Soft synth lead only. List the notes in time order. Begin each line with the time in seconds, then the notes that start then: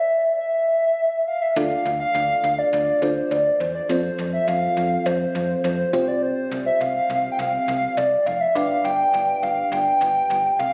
Already playing: E5
0.40 E5
1.27 F5
1.42 E5
1.56 F5
2.00 F5
2.58 D5
2.73 D5
3.02 C5
3.31 D5
3.60 C5
3.75 D5
3.89 C5
4.33 E5
4.48 F5
5.06 C5
5.64 C5
5.93 C5
6.08 D5
6.23 C5
6.66 E5
6.81 F5
7.32 G5
7.39 F5
7.97 D5
8.26 F5
8.41 E5
8.56 F5
8.85 G5
9.43 F5
9.72 G5
10.59 F5